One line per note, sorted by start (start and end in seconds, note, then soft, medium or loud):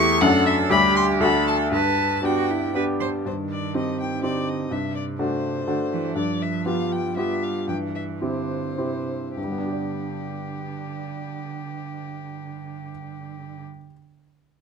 0.00 0.20 E2 medium
0.00 0.18 A3 medium
0.00 0.18 E4 medium
0.00 0.18 G4 medium
0.00 0.21 G4 medium
0.00 0.23 C#6 loud
0.21 0.69 F#2 medium
0.21 0.67 A3 medium
0.21 0.67 D4 medium
0.21 0.68 F#4 medium
0.21 0.71 A4 medium
0.21 0.45 F#5 loud
0.46 0.54 E5 medium
0.70 1.19 D2 medium
0.70 1.17 G3 medium
0.70 1.17 D4 soft
0.70 1.22 G4 medium
0.70 1.17 G4 medium
0.70 0.95 B5 loud
0.96 1.04 C6 loud
1.20 1.70 D2 medium
1.20 1.68 A3 medium
1.20 1.68 D4 medium
1.20 1.68 F#4 medium
1.20 1.72 A4 medium
1.20 1.46 B5 medium
1.48 1.56 A5 loud
1.71 2.21 G2 medium
1.71 2.18 B4 medium
1.71 2.27 A5 loud
2.23 2.70 B3 soft
2.23 2.70 D4 soft
2.23 2.51 F#4 medium
2.23 2.71 G4 soft
2.23 2.75 G5 medium
2.50 2.75 E4 medium
2.75 3.22 B3 soft
2.75 3.22 D4 soft
2.75 3.22 G4 medium
2.75 2.83 B4 medium
3.01 3.09 C5 medium
3.26 3.73 G2 soft
3.26 4.25 D#3 soft
3.26 3.34 C5 medium
3.52 3.75 D5 medium
3.74 4.19 C4 soft
3.74 4.20 D#4 soft
3.74 4.20 G4 soft
3.74 4.00 D#5 medium
4.00 4.24 G5 medium
4.23 4.72 D3 soft
4.23 4.67 C4 soft
4.23 4.68 D#4 soft
4.23 4.68 G4 soft
4.23 4.50 D5 medium
4.48 4.74 D#5 soft
4.71 5.18 G2 soft
4.71 5.66 C3 soft
4.71 4.95 E5 medium
4.96 5.04 D5 medium
5.19 5.64 A3 soft
5.19 5.63 D4 soft
5.19 5.64 F#4 soft
5.19 6.14 C5 medium
5.67 5.76 D3 soft
5.67 6.12 A3 soft
5.67 6.12 D4 soft
5.67 6.12 F#4 soft
5.92 6.18 E3 medium
6.15 6.64 G2 soft
6.15 7.16 F3 soft
6.15 6.43 D5 medium
6.42 6.66 E5 medium
6.66 7.12 B3 soft
6.66 7.12 F4 soft
6.66 7.12 G4 soft
6.66 6.93 F5 medium
6.92 7.16 G5 medium
7.17 7.70 G3 soft
7.17 7.64 B3 soft
7.17 7.64 F4 soft
7.17 7.65 G4 soft
7.17 7.44 E5 medium
7.43 7.68 F5 soft
7.68 8.20 G2 soft
7.68 8.24 E3 soft
7.68 7.76 G5 medium
7.95 8.03 E5 soft
8.22 8.79 D3 soft
8.22 8.74 C4 soft
8.22 8.74 E4 soft
8.22 8.74 G4 soft
8.22 9.35 C5 soft
8.78 9.13 C3 soft
8.78 9.33 C4 soft
8.78 9.33 E4 soft
8.78 9.33 G4 soft
9.37 13.63 G2 soft
9.37 13.63 D3 soft
9.37 13.63 G4 soft
9.44 13.70 G3 soft
9.51 13.78 B3 soft
9.58 13.85 D4 soft
9.65 13.91 G4 soft
9.72 13.99 D5 soft